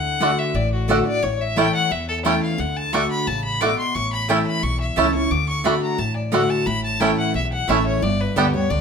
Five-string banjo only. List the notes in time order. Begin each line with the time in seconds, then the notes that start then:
0.22 A3 D4 F#4
0.90 A3 D4 F#4
1.58 A3 C#4 E4
2.26 A3 C#4 E4
2.94 A3 D4 F#4
3.62 A3 D4 F#4
4.30 A3 C#4 E4
4.98 A3 C#4 E4
5.66 A3 D4 F#4
6.34 A3 D4 F#4
7.02 A3 C#4 E4
7.70 A3 C#4 E4
8.38 B3 D4 G4